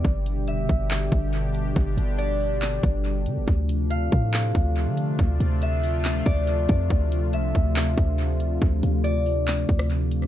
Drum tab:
HH |x-x-x-x-x-x-x-x-|x-x-x-o-x-x-x-x-|x-x-x-x-x-x-x-x-|x-x-x-o-x-x-x-x-|
CP |--------x-------|--------x-------|--------x-------|--------x-------|
SD |----------------|----------------|----------------|----------------|
BD |o-----o---o-----|o---------o-----|o-----o---o-----|o---------o---o-|

HH |x-x-x-x-x-x-x-x-|x-x-x-o-x-x-x-x-|
CP |--------x-------|--------x-------|
SD |----------------|-----------r----|
BD |o-----o---o-----|o---------o-----|